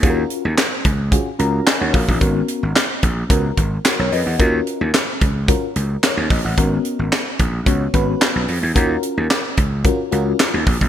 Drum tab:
HH |x-x-x-x-x-x-x-o-|x-x-x-x-x-x-x-o-|x-x-x-x-x-x-x-o-|x-x-x-x-x-x-x-o-|
CP |----x-------x---|----x-------x---|----x-------x---|----x-------x---|
SD |----o-------o---|----o-------o---|----o-------o---|----o-------o---|
BD |o-----o-o-----oo|o-----o-o-o-----|o-----o-o-----o-|o-----o-o-o-----|

HH |x-x-x-x-x-x-x-o-|
CP |----x-------x---|
SD |----o-------o---|
BD |o-----o-o-----oo|